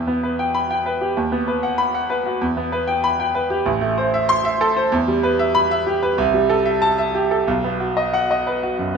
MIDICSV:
0, 0, Header, 1, 2, 480
1, 0, Start_track
1, 0, Key_signature, 1, "minor"
1, 0, Tempo, 626305
1, 1857, Time_signature, 4, 2, 24, 8
1, 4732, Tempo, 650054
1, 6796, End_track
2, 0, Start_track
2, 0, Title_t, "Grand piano"
2, 0, Program_c, 0, 0
2, 0, Note_on_c, 0, 40, 62
2, 57, Note_on_c, 0, 59, 46
2, 75, Control_c, 0, 64, 127
2, 180, Note_on_c, 0, 71, 48
2, 251, Note_off_c, 0, 59, 0
2, 300, Note_on_c, 0, 79, 53
2, 374, Note_off_c, 0, 71, 0
2, 417, Note_on_c, 0, 83, 71
2, 494, Note_off_c, 0, 79, 0
2, 541, Note_on_c, 0, 79, 54
2, 612, Note_off_c, 0, 83, 0
2, 658, Note_on_c, 0, 71, 49
2, 732, Note_off_c, 0, 79, 0
2, 775, Note_on_c, 0, 67, 50
2, 849, Note_off_c, 0, 71, 0
2, 869, Note_off_c, 0, 40, 0
2, 895, Note_on_c, 0, 39, 62
2, 896, Note_off_c, 0, 67, 0
2, 909, Control_c, 0, 64, 0
2, 1012, Note_on_c, 0, 59, 49
2, 1033, Control_c, 0, 64, 127
2, 1131, Note_on_c, 0, 71, 52
2, 1206, Note_off_c, 0, 59, 0
2, 1249, Note_on_c, 0, 78, 55
2, 1326, Note_off_c, 0, 71, 0
2, 1364, Note_on_c, 0, 83, 69
2, 1446, Note_off_c, 0, 78, 0
2, 1491, Note_on_c, 0, 78, 54
2, 1563, Note_off_c, 0, 83, 0
2, 1608, Note_on_c, 0, 71, 57
2, 1686, Note_off_c, 0, 78, 0
2, 1730, Note_on_c, 0, 66, 50
2, 1804, Note_off_c, 0, 71, 0
2, 1827, Note_off_c, 0, 39, 0
2, 1850, Note_on_c, 0, 40, 69
2, 1854, Note_off_c, 0, 66, 0
2, 1872, Control_c, 0, 64, 0
2, 1969, Note_on_c, 0, 59, 47
2, 1977, Control_c, 0, 64, 127
2, 2087, Note_on_c, 0, 71, 57
2, 2165, Note_off_c, 0, 59, 0
2, 2203, Note_on_c, 0, 79, 59
2, 2284, Note_off_c, 0, 71, 0
2, 2328, Note_on_c, 0, 83, 80
2, 2401, Note_off_c, 0, 79, 0
2, 2450, Note_on_c, 0, 79, 59
2, 2523, Note_off_c, 0, 83, 0
2, 2566, Note_on_c, 0, 71, 58
2, 2643, Note_off_c, 0, 79, 0
2, 2684, Note_on_c, 0, 67, 59
2, 2761, Note_off_c, 0, 71, 0
2, 2780, Note_off_c, 0, 40, 0
2, 2802, Note_on_c, 0, 33, 71
2, 2808, Note_off_c, 0, 67, 0
2, 2827, Control_c, 0, 64, 0
2, 2921, Note_on_c, 0, 57, 60
2, 2952, Control_c, 0, 64, 127
2, 3048, Note_on_c, 0, 72, 59
2, 3119, Note_off_c, 0, 57, 0
2, 3172, Note_on_c, 0, 76, 67
2, 3242, Note_off_c, 0, 72, 0
2, 3288, Note_on_c, 0, 84, 88
2, 3363, Note_off_c, 0, 76, 0
2, 3408, Note_on_c, 0, 76, 69
2, 3481, Note_off_c, 0, 84, 0
2, 3532, Note_on_c, 0, 69, 72
2, 3600, Note_off_c, 0, 76, 0
2, 3652, Note_on_c, 0, 72, 61
2, 3722, Note_off_c, 0, 69, 0
2, 3735, Note_off_c, 0, 33, 0
2, 3770, Note_off_c, 0, 72, 0
2, 3770, Note_on_c, 0, 40, 84
2, 3784, Control_c, 0, 64, 0
2, 3890, Note_on_c, 0, 55, 56
2, 3903, Control_c, 0, 64, 127
2, 4011, Note_on_c, 0, 71, 65
2, 4080, Note_off_c, 0, 55, 0
2, 4133, Note_on_c, 0, 76, 69
2, 4201, Note_off_c, 0, 71, 0
2, 4251, Note_on_c, 0, 83, 97
2, 4322, Note_off_c, 0, 76, 0
2, 4378, Note_on_c, 0, 76, 71
2, 4441, Note_off_c, 0, 83, 0
2, 4496, Note_on_c, 0, 67, 63
2, 4566, Note_off_c, 0, 76, 0
2, 4618, Note_on_c, 0, 71, 64
2, 4686, Note_off_c, 0, 67, 0
2, 4702, Note_off_c, 0, 40, 0
2, 4734, Note_off_c, 0, 71, 0
2, 4736, Note_on_c, 0, 36, 79
2, 4745, Control_c, 0, 64, 0
2, 4852, Control_c, 0, 64, 127
2, 4853, Note_on_c, 0, 55, 60
2, 4968, Note_on_c, 0, 69, 65
2, 5039, Note_off_c, 0, 55, 0
2, 5087, Note_on_c, 0, 76, 66
2, 5157, Note_off_c, 0, 69, 0
2, 5206, Note_on_c, 0, 81, 83
2, 5277, Note_off_c, 0, 76, 0
2, 5329, Note_on_c, 0, 76, 59
2, 5398, Note_off_c, 0, 81, 0
2, 5449, Note_on_c, 0, 67, 62
2, 5520, Note_off_c, 0, 76, 0
2, 5572, Note_on_c, 0, 69, 53
2, 5641, Note_off_c, 0, 67, 0
2, 5662, Note_off_c, 0, 36, 0
2, 5690, Note_off_c, 0, 69, 0
2, 5692, Note_on_c, 0, 35, 71
2, 5701, Control_c, 0, 64, 0
2, 5815, Note_on_c, 0, 59, 49
2, 5827, Control_c, 0, 64, 127
2, 5933, Note_on_c, 0, 66, 51
2, 6006, Note_off_c, 0, 59, 0
2, 6056, Note_on_c, 0, 75, 58
2, 6126, Note_off_c, 0, 66, 0
2, 6179, Note_on_c, 0, 78, 73
2, 6247, Note_off_c, 0, 75, 0
2, 6307, Note_on_c, 0, 75, 54
2, 6369, Note_off_c, 0, 78, 0
2, 6426, Note_on_c, 0, 71, 53
2, 6492, Note_off_c, 0, 75, 0
2, 6546, Note_on_c, 0, 66, 53
2, 6611, Note_off_c, 0, 71, 0
2, 6625, Note_off_c, 0, 35, 0
2, 6663, Note_on_c, 0, 42, 51
2, 6730, Note_off_c, 0, 66, 0
2, 6796, Note_off_c, 0, 42, 0
2, 6796, End_track
0, 0, End_of_file